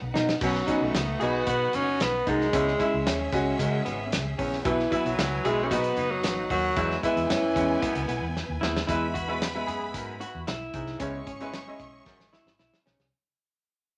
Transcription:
Already playing: tenor saxophone D#3, string section D#4 B4 F#5
0.02 fingered electric bass B1
0.14 baritone saxophone F#2, fingered electric bass B2, clean electric guitar D#4, snare
0.29 snare
0.41 fingered electric bass B1, baritone saxophone B2, upright piano F#3 B3 C#4, tenor saxophone F#3, kick, crash
0.55 snare
0.67 upright piano F#3 B3 C#4, horn section B3 D#4 F#4, clean electric guitar D#4, kick, closed hi-hat
0.81 fingered electric bass B1, tenor saxophone A3
0.93 fingered electric bass C#2, horn section F#3 B3 D#4, snare, closed hi-hat
1.20 fingered electric bass B1, upright piano F#3 B3 D#4, horn section B3 D#4 F#4, tenor saxophone B3, clean electric guitar G#4, closed hi-hat
1.47 baritone saxophone G#2, fingered electric bass B2, tenor saxophone B3, clean electric guitar F#4, kick, closed hi-hat
1.73 fingered electric bass F#1, horn section F#3 B3 D#4, tenor saxophone C#4, closed hi-hat
2.00 fingered electric bass B1, tenor saxophone B3, snare, closed hi-hat
2.27 fingered electric bass C2, baritone saxophone F#2, tenor saxophone G#3, clean electric guitar D#4, kick, closed hi-hat
2.41 snare
2.52 fingered electric bass C#2, baritone saxophone E2, upright piano G#3 C#4 E4, string section C#4 G#4 E5, clean electric guitar C#4, kick, closed hi-hat
2.68 snare
2.79 upright piano G#3 C#4 E4, clean electric guitar E4, kick, closed hi-hat
2.93 fingered electric bass C#2
3.06 fingered electric bass D#2, clean electric guitar C#4, snare, closed hi-hat
3.32 fingered electric bass C#2, upright piano G#3 C#4 F#4, kick, closed hi-hat
3.59 baritone saxophone F#2, fingered electric bass C#3, clean electric guitar G#3, kick, closed hi-hat
3.85 fingered electric bass G#1, clean electric guitar B3, closed hi-hat
4.12 fingered electric bass C#2, snare, closed hi-hat
4.39 fingered electric bass A#1, baritone saxophone E2, clean electric guitar C#4, kick, open hi-hat
4.53 snare
4.64 fingered electric bass B1, baritone saxophone B2, tenor saxophone E3, upright piano F#3 B3 E4, string section E4 B4 G#5, kick, closed hi-hat
4.79 snare
4.90 upright piano F#3 B3 E4, horn section B3 F#4, clean electric guitar E4, kick, closed hi-hat
5.05 fingered electric bass B1, tenor saxophone F#3, closed hi-hat
5.17 fingered electric bass C#2, horn section F#3 B3 E4, snare, closed hi-hat
5.44 fingered electric bass B1, upright piano F#3 B3 E4, tenor saxophone G#3, horn section B3 D#4 F#4, clean electric guitar G#4, closed hi-hat
5.64 tenor saxophone C#4
5.70 baritone saxophone G#2, fingered electric bass B2, upright piano F#3 B3 D#4, tenor saxophone B3, string section D#4 B4 F#5, clean electric guitar F#4, kick, closed hi-hat
5.84 closed hi-hat
5.97 fingered electric bass F#1, horn section F#3 B3 D#4, closed hi-hat
6.11 tenor saxophone F#3
6.24 fingered electric bass A1, snare, closed hi-hat
6.50 fingered electric bass D#2, baritone saxophone F#2, tenor saxophone F#3, clean electric guitar F#4, kick, open hi-hat
6.75 baritone saxophone E2, fingered electric bass E2, upright piano G#3 B3 E4, string section E4 B4 G#5, clean electric guitar E4, kick, closed hi-hat
6.91 snare
7.03 tenor saxophone E3, upright piano G#3 B3 E4, clean electric guitar E4, kick, closed hi-hat
7.17 fingered electric bass E2, closed hi-hat
7.30 fingered electric bass F#2, clean electric guitar C#4, snare, closed hi-hat
7.56 fingered electric bass E2, upright piano G#3 B3 C#4, kick, closed hi-hat
7.82 baritone saxophone F#2, clean electric guitar B3, kick, closed hi-hat
7.95 fingered electric bass C#2, closed hi-hat
8.08 fingered electric bass B1, clean electric guitar B3, closed hi-hat
8.21 fingered electric bass E2
8.37 snare
8.49 fingered electric bass D#2
8.61 fingered electric bass D#2, baritone saxophone E2, clean electric guitar E4, snare
8.77 snare
8.87 fingered electric bass E2, baritone saxophone E2, horn section G#3 B3 E4, upright piano G#3 B3 E4 B4, clean electric guitar E4, string section B4 B5, kick, closed hi-hat
9.14 clean electric guitar F#4, kick, closed hi-hat
9.28 upright piano G#3 B3 E4 B4
9.42 snare, closed hi-hat
9.54 upright piano G#3 B3 E4 B4
9.67 fingered electric bass F#2, clean electric guitar G#4, closed hi-hat
9.94 baritone saxophone F#2, fingered electric bass G#2, kick, closed hi-hat
10.21 clean electric guitar F#4, closed hi-hat
10.35 fingered electric bass E2
10.47 fingered electric bass B1, clean electric guitar E4, snare, closed hi-hat
10.74 fingered electric bass C2, baritone saxophone G#2, kick, closed hi-hat
10.87 snare
11.00 fingered electric bass C#2, baritone saxophone E2, upright piano G#3 C#4 E4 C#5, clean electric guitar C#4, horn section C#4 E4 G#4, string section C#5 C#6, kick, closed hi-hat
11.27 fingered electric bass G#1, clean electric guitar C#4, kick, closed hi-hat
11.40 upright piano G#3 C#4 E4 B4, closed hi-hat
11.53 clean electric guitar C#4, snare, closed hi-hat
11.67 upright piano G#3 C#4 E4 D#5
11.80 fingered electric bass B1, kick, closed hi-hat
12.06 fingered electric bass A1, baritone saxophone F#2, kick, snare
12.20 snare
12.33 clean electric guitar E4, snare
12.46 fingered electric bass G#1, snare
12.59 fingered electric bass B1, clean electric guitar E4, snare
12.74 snare
12.86 fingered electric bass B1, baritone saxophone G#2, clean electric guitar C#4, snare
12.99 fingered electric bass C2, snare

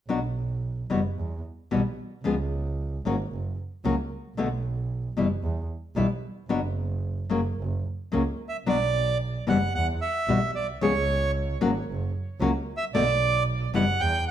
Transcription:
0.09 double bass B1, nylon-string guitar B2 F#3 B3 D4 F#4
0.90 double bass F#1, nylon-string guitar B2 E3 G3 B3 F#4
1.17 double bass E2
1.71 double bass B1, nylon-string guitar B2 E3 G3 B3 F#4
2.24 double bass C#2, nylon-string guitar C#3 F3 G#3 B3 G#4
3.05 double bass G#1, nylon-string guitar C#3 F#3 A#3 C#4 F#4
3.31 double bass F#1
3.84 double bass C#2, nylon-string guitar C#3 F#3 A#3 C#4 F#4
4.37 double bass B1, nylon-string guitar B2 D3 A3 B3 F#4
5.17 double bass F#1, nylon-string guitar B2 E3 G3 B3 E4
5.42 double bass E2
5.96 double bass B1, nylon-string guitar B2 E3 G3 B3 E4
6.49 double bass F#1, nylon-string guitar B2 F#3 B3 D4 F#4
7.30 double bass F#1, nylon-string guitar C#3 F#3 A#3 C#4 F#4
7.58 double bass F#1
8.12 double bass C#2, nylon-string guitar C#3 F#3 A#3 C#4 F#4
8.49 bandoneon E5
8.66 double bass B1, nylon-string guitar B2 F#3 B3 D4 F#4, bandoneon D5
9.47 double bass F#1, nylon-string guitar B2 E3 G3 B3 F#4, bandoneon F#5
9.75 double bass E2, bandoneon F#5
10.01 bandoneon E5
10.27 double bass B1, nylon-string guitar B2 E3 G3 B3 F#4
10.55 double bass B1, bandoneon D5
10.81 double bass C#2, nylon-string guitar C#3 F3 G#3 B3 G#4, bandoneon C#5
11.61 double bass G#1, nylon-string guitar C#3 F#3 A#3 C#4 F#4
11.88 double bass F#1
12.40 double bass C#2, nylon-string guitar C#3 F#3 A#3 C#4 F#4
12.77 bandoneon E5
12.92 double bass B1, nylon-string guitar B2 D3 A3 B3 F#4, bandoneon D5
13.74 double bass F#1, nylon-string guitar B2 E3 G3 B3 E4, bandoneon F#5
14.00 double bass E2, bandoneon G5

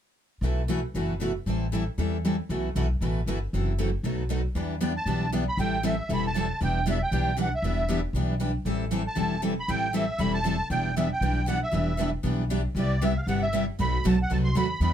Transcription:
0.41 upright bass B1, steel-string acoustic guitar B2 E3 A3 E4 F#4 B4
0.68 steel-string acoustic guitar B2 E3 A3 E4 F#4 B4
0.94 upright bass F#1, steel-string acoustic guitar B2 E3 A3 E4 F#4 B4
1.21 steel-string acoustic guitar B2 E3 A3 E4 F#4 B4
1.46 upright bass A1, steel-string acoustic guitar E3 G3 C4 E4 A4
1.74 steel-string acoustic guitar E3 G3 C4 E4 A4
1.98 upright bass E2, steel-string acoustic guitar E3 G3 C4 E4 A4
2.25 steel-string acoustic guitar E3 G3 C4 E4 A4
2.49 upright bass B1, steel-string acoustic guitar B2 E3 A3 E4 F#4 B4
2.75 upright bass B1, steel-string acoustic guitar B2 E3 A3 E4 F#4 B4
3.01 upright bass A1, steel-string acoustic guitar B2 E3 A3 E4 F#4 B4
3.26 upright bass G1, steel-string acoustic guitar B2 E3 A3 E4 F#4 B4
3.53 upright bass F#1, steel-string acoustic guitar C3 E3 F#3 A3 C4 E4 F#4 A4
3.78 steel-string acoustic guitar C3 E3 F#3 A3 C4 E4 F#4 A4
4.03 upright bass B1, steel-string acoustic guitar B2 F#3 A3 D#4 F#4 B4
4.30 steel-string acoustic guitar B2 F#3 A3 D#4 F#4 B4
4.55 upright bass E2, steel-string acoustic guitar E3 G3 B3 D4 E4 G4 B4
4.81 steel-string acoustic guitar E3 G3 B3 D4 E4 G4 B4
4.97 accordion A5
5.06 upright bass B1, steel-string acoustic guitar E3 G3 B3 D4 E4 G4 B4
5.32 steel-string acoustic guitar E3 G3 B3 D4 E4 G4 B4
5.48 accordion B5
5.57 upright bass A1, steel-string acoustic guitar E3 G3 C4 E4 A4, accordion G5
5.84 steel-string acoustic guitar E3 G3 C4 E4 A4, accordion E5
6.09 upright bass E1, steel-string acoustic guitar E3 G3 C4 E4 A4
6.13 accordion B5
6.27 accordion A5
6.34 steel-string acoustic guitar E3 G3 C4 E4 A4
6.60 upright bass E1, steel-string acoustic guitar E3 G3 B3 D4 E4 G4 B4, accordion G5
6.86 steel-string acoustic guitar E3 G3 B3 D4 E4 G4 B4
6.90 accordion E5
7.03 accordion G5
7.11 upright bass B1, steel-string acoustic guitar E3 G3 B3 D4 E4 G4 B4
7.37 steel-string acoustic guitar E3 G3 B3 D4 E4 G4 B4
7.42 accordion F#5
7.55 accordion E5
7.62 upright bass E1, steel-string acoustic guitar E3 G3 B3 D4 E4 G4 B4
7.88 steel-string acoustic guitar E3 G3 B3 D4 E4 G4 B4
8.13 upright bass B1, steel-string acoustic guitar E3 G3 B3 D4 E4 G4 B4
8.40 steel-string acoustic guitar E3 G3 B3 D4 E4 G4 B4
8.65 upright bass A1, steel-string acoustic guitar E3 G3 C4 E4 A4
8.91 steel-string acoustic guitar E3 G3 C4 E4 A4
9.07 accordion A5
9.16 upright bass E1, steel-string acoustic guitar E3 G3 C4 E4 A4
9.42 steel-string acoustic guitar E3 G3 C4 E4 A4
9.60 accordion B5
9.68 upright bass A1, steel-string acoustic guitar E3 G3 C4 E4 A4, accordion G5
9.94 steel-string acoustic guitar E3 G3 C4 E4 A4, accordion E5
10.19 upright bass E1, steel-string acoustic guitar E3 G3 C4 E4 A4, accordion B5
10.34 accordion A5
10.46 steel-string acoustic guitar E3 G3 C4 E4 A4
10.70 upright bass E1, steel-string acoustic guitar E3 G3 B3 D4 E4 G4 B4, accordion G5
10.96 steel-string acoustic guitar E3 G3 B3 D4 E4 G4 B4, accordion E5
11.12 accordion G5
11.21 upright bass B1, steel-string acoustic guitar E3 G3 B3 D4 E4 G4 B4
11.47 steel-string acoustic guitar E3 G3 B3 D4 E4 G4 B4, accordion F#5
11.63 accordion E5
11.72 upright bass E1, steel-string acoustic guitar E3 G3 B3 D4 E4 G4 B4
11.98 steel-string acoustic guitar E3 G3 B3 D4 E4 G4 B4
12.23 upright bass B1, steel-string acoustic guitar E3 G3 B3 D4 E4 G4 B4
12.50 steel-string acoustic guitar E3 G3 B3 D4 E4 G4 B4
12.75 upright bass C2, steel-string acoustic guitar C3 G3 B3 E4 G4
12.79 accordion D5
13.02 steel-string acoustic guitar C3 G3 B3 E4 G4, accordion E5
13.17 accordion F5
13.23 accordion F5
13.27 upright bass G1, steel-string acoustic guitar C3 G3 B3 E4 G4, accordion F#5
13.42 accordion E5
13.53 steel-string acoustic guitar C3 G3 B3 E4 G4
13.79 upright bass B1, steel-string acoustic guitar B2 F#3 A3 D#4 F#4 B4, accordion B5
14.04 upright bass B1, steel-string acoustic guitar B2 F#3 A3 D#4 F#4 B4, accordion A5
14.22 accordion F#5
14.30 upright bass C2, steel-string acoustic guitar B2 F#3 A3 D#4 F#4 B4, accordion A5
14.44 accordion C6
14.55 upright bass D#2, steel-string acoustic guitar B2 F#3 A3 D#4 F#4 B4, accordion B5
14.80 upright bass E2, steel-string acoustic guitar E3 G3 B3 D4 E4 G4 B4, accordion B5

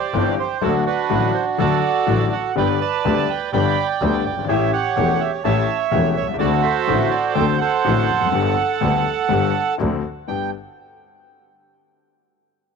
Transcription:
Already playing: bandoneon G4 C5 D5
0.14 double bass G1, grand piano G1 G2 E3 G3 C4 G4
0.39 bandoneon C5
0.61 double bass D2, grand piano D2 D3 F#3 A3 F#4, bandoneon D4 F#4 A4
0.86 bandoneon D4 F#4 B4
1.09 grand piano A1 A2 D3 F#3 A3 F#4, double bass A1
1.34 bandoneon C5
1.58 grand piano D2 D3 F#3 A3 F#4, double bass D2, bandoneon F#4 A4 D5
2.06 grand piano A1 A2 D3 F#3 A3 F#4, double bass A1
2.33 bandoneon F#5
2.56 grand piano G1 G2 D3 G3 B3 G4, double bass G1, bandoneon B4 D5 G5
2.81 bandoneon D5 A5
3.05 double bass D2, grand piano D2 D3 G3 B3 G4
3.29 bandoneon G5
3.53 double bass G1, grand piano G1 G2 D3 G3 B3 G4, bandoneon D5 G5 B5
4.01 double bass D2, grand piano D2 D3 G3 B3 G4
4.24 double bass G1, bandoneon D5
4.32 grand piano F#1
4.38 grand piano G1
4.45 grand piano G#1, bandoneon G4 C#5
4.49 double bass A1, grand piano A1 A2 E3 A3 C#4 G4, bandoneon E5
4.73 bandoneon C#5 F#5
4.97 double bass E1, grand piano E1 E2 E3 A3 C#4 G4
5.21 bandoneon E5
5.44 double bass A1, grand piano A1 A2 E3 A3 C#4 G4, bandoneon C#5 E5 A5
5.91 grand piano E1 E2 E3 A3 C#4 G4, double bass E1
6.16 double bass C2, bandoneon C#5
6.22 grand piano B1
6.27 grand piano C2
6.34 grand piano C#2
6.39 double bass D2, grand piano D2 D3 A3 C4 F#4, bandoneon F#4 A4 D5
6.62 bandoneon A4 C5 E5
6.87 grand piano A1 A2 D3 A3 C4 F#4, double bass A1
7.11 bandoneon D5
7.34 grand piano D2 D3 A3 C4 F#4, double bass D2, bandoneon C5 G5
7.58 bandoneon A4 C5 F#5
7.84 grand piano A1 A2 D3 A3 C4 F#4, double bass A1
8.09 double bass F1
8.15 grand piano E2
8.21 grand piano F2
8.26 grand piano F#2
8.32 grand piano G1 G2 D3 G3 B3 G4, double bass G1
8.81 grand piano D2 D3 G3 B3 G4, double bass D2
9.29 grand piano G1 G2 D3 G3 B3 G4, double bass G1
9.78 grand piano D2 D3 A3 C4 F#4, double bass D2
10.28 double bass G1, grand piano G2 B3 D4 G4, bandoneon G5

